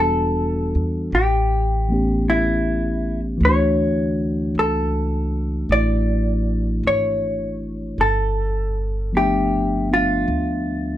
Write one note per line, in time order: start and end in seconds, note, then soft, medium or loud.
0.00 0.71 E1 medium
0.00 1.12 E3 soft
0.00 1.12 G3 soft
0.00 1.13 B3 soft
0.00 1.13 D4 soft
0.00 1.14 F#4 soft
0.00 1.16 A4 medium
0.75 1.09 E2 medium
1.12 3.37 A1 medium
1.12 2.24 G4 medium
1.89 3.36 E3 soft
1.89 3.39 A3 soft
1.89 3.41 B3 soft
1.89 3.42 C#4 soft
1.94 3.43 G4 soft
2.30 3.20 E4 medium
3.37 4.51 D2 medium
3.37 7.97 E3 soft
3.37 5.68 A3 soft
3.45 8.01 D4 soft
3.45 8.03 F#4 medium
3.45 4.60 C#5 medium
4.55 5.65 C#2 medium
4.59 5.75 A4 medium
5.69 6.80 A1 medium
5.69 7.99 A3 soft
5.69 8.00 E4 soft
5.69 6.87 D5 medium
6.83 7.94 G#1 medium
6.83 8.00 C#5 medium
7.98 10.24 G1 medium
7.98 9.18 A4 medium
9.13 10.97 F3 soft
9.13 10.97 A3 soft
9.13 9.89 B3 soft
9.13 9.91 D4 soft
9.17 9.89 G4 medium
9.17 10.97 E5 soft
9.90 10.97 B3 soft
9.90 10.97 D4 soft
9.90 10.97 F4 soft
9.90 10.97 F4 medium
10.28 10.97 D2 medium